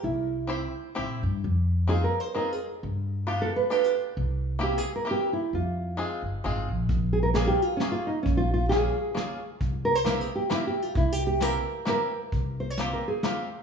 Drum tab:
HH |------|------|------|------|
SD |------|------|------|------|
BD |------|------|------|------|

HH |------|x-x-x-|x-x-x-|x-x-x-|
SD |------|--o-o-|--o-o-|--o-o-|
BD |------|o-----|o-----|o-----|

HH |x-x-x-|x-x-x-|
SD |--o-o-|--o-o-|
BD |o-----|o-----|